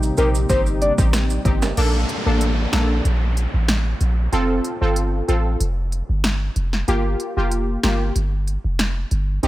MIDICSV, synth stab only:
0, 0, Header, 1, 2, 480
1, 0, Start_track
1, 0, Key_signature, -2, "major"
1, 0, Tempo, 638298
1, 1333, Time_signature, 4, 2, 24, 8
1, 7126, End_track
2, 0, Start_track
2, 0, Title_t, "Synth stab"
2, 0, Program_c, 0, 62
2, 0, Note_on_c, 0, 60, 79
2, 0, Note_on_c, 0, 63, 71
2, 0, Note_on_c, 0, 67, 86
2, 105, Note_off_c, 0, 60, 0
2, 106, Note_off_c, 0, 63, 0
2, 107, Note_off_c, 0, 67, 0
2, 131, Note_on_c, 0, 60, 81
2, 133, Note_on_c, 0, 63, 75
2, 136, Note_on_c, 0, 67, 88
2, 354, Note_off_c, 0, 60, 0
2, 355, Note_off_c, 0, 63, 0
2, 356, Note_off_c, 0, 67, 0
2, 370, Note_on_c, 0, 60, 92
2, 373, Note_on_c, 0, 63, 86
2, 375, Note_on_c, 0, 67, 105
2, 709, Note_off_c, 0, 60, 0
2, 710, Note_off_c, 0, 63, 0
2, 711, Note_off_c, 0, 67, 0
2, 737, Note_on_c, 0, 60, 74
2, 740, Note_on_c, 0, 63, 69
2, 742, Note_on_c, 0, 67, 86
2, 1065, Note_off_c, 0, 60, 0
2, 1066, Note_off_c, 0, 63, 0
2, 1067, Note_off_c, 0, 67, 0
2, 1090, Note_on_c, 0, 60, 80
2, 1093, Note_on_c, 0, 63, 70
2, 1095, Note_on_c, 0, 67, 88
2, 1314, Note_off_c, 0, 60, 0
2, 1315, Note_off_c, 0, 63, 0
2, 1316, Note_off_c, 0, 67, 0
2, 1330, Note_on_c, 0, 58, 93
2, 1332, Note_on_c, 0, 62, 87
2, 1335, Note_on_c, 0, 69, 105
2, 1668, Note_off_c, 0, 58, 0
2, 1670, Note_off_c, 0, 62, 0
2, 1671, Note_off_c, 0, 69, 0
2, 1698, Note_on_c, 0, 58, 74
2, 1699, Note_on_c, 0, 62, 70
2, 1702, Note_on_c, 0, 69, 80
2, 2025, Note_off_c, 0, 58, 0
2, 2026, Note_off_c, 0, 62, 0
2, 2027, Note_off_c, 0, 69, 0
2, 2050, Note_on_c, 0, 58, 78
2, 2053, Note_on_c, 0, 62, 72
2, 2055, Note_on_c, 0, 69, 84
2, 2274, Note_off_c, 0, 58, 0
2, 2275, Note_off_c, 0, 62, 0
2, 2276, Note_off_c, 0, 69, 0
2, 3251, Note_on_c, 0, 60, 99
2, 3253, Note_on_c, 0, 65, 90
2, 3256, Note_on_c, 0, 69, 107
2, 3589, Note_off_c, 0, 60, 0
2, 3590, Note_off_c, 0, 65, 0
2, 3591, Note_off_c, 0, 69, 0
2, 3617, Note_on_c, 0, 60, 78
2, 3620, Note_on_c, 0, 65, 72
2, 3622, Note_on_c, 0, 69, 84
2, 3945, Note_off_c, 0, 60, 0
2, 3946, Note_off_c, 0, 65, 0
2, 3947, Note_off_c, 0, 69, 0
2, 3970, Note_on_c, 0, 60, 75
2, 3973, Note_on_c, 0, 65, 73
2, 3974, Note_on_c, 0, 69, 85
2, 4194, Note_off_c, 0, 60, 0
2, 4195, Note_off_c, 0, 65, 0
2, 4196, Note_off_c, 0, 69, 0
2, 5171, Note_on_c, 0, 58, 96
2, 5173, Note_on_c, 0, 65, 85
2, 5175, Note_on_c, 0, 67, 105
2, 5509, Note_off_c, 0, 58, 0
2, 5510, Note_off_c, 0, 65, 0
2, 5511, Note_off_c, 0, 67, 0
2, 5538, Note_on_c, 0, 58, 78
2, 5541, Note_on_c, 0, 65, 69
2, 5543, Note_on_c, 0, 67, 84
2, 5865, Note_off_c, 0, 58, 0
2, 5866, Note_off_c, 0, 65, 0
2, 5867, Note_off_c, 0, 67, 0
2, 5891, Note_on_c, 0, 58, 79
2, 5893, Note_on_c, 0, 65, 71
2, 5895, Note_on_c, 0, 67, 87
2, 6114, Note_off_c, 0, 58, 0
2, 6115, Note_off_c, 0, 65, 0
2, 6116, Note_off_c, 0, 67, 0
2, 7090, Note_on_c, 0, 60, 94
2, 7092, Note_on_c, 0, 63, 86
2, 7095, Note_on_c, 0, 67, 105
2, 7126, Note_off_c, 0, 60, 0
2, 7126, Note_off_c, 0, 63, 0
2, 7126, Note_off_c, 0, 67, 0
2, 7126, End_track
0, 0, End_of_file